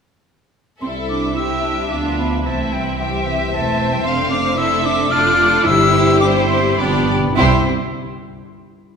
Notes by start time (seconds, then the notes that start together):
0.81 C2 G3 C4 E4 A4 E5 C6
1.10 D4 D6
1.36 G3 C4 E4 G4 E6
1.64 D4
1.91 D2 F3 B3 D4 F4 D6
2.18 B3 B5
2.44 C2 E3 A3 C4 E4 E5 A5
2.72 G3 G5
2.98 E3 G3 C4 G4 E5 G5
3.26 E3 E5
3.52 E1 A3 C4 C5 A5
3.92 G3 G5
4.04 F1 A3 C4 D4 F5 C6
4.30 D4 D6
4.58 C4 E4 A4 E5 E6
4.84 D4 D6
5.11 F1 A3 D4 F4 A4 D5 F6
5.38 D4
5.65 G1 G2 G3 C4 E4 G4 C5 E6
6.20 D4 E4 C5 D6
6.49 C4 C6
6.78 G1 G2 F3 B3 D4 G4 D5 B5
6.86 G2
6.94 G2
7.03 G2
7.11 G2
7.18 G2
7.27 G2
7.36 C2 C3 G3 C4 E4 G4 C5 C6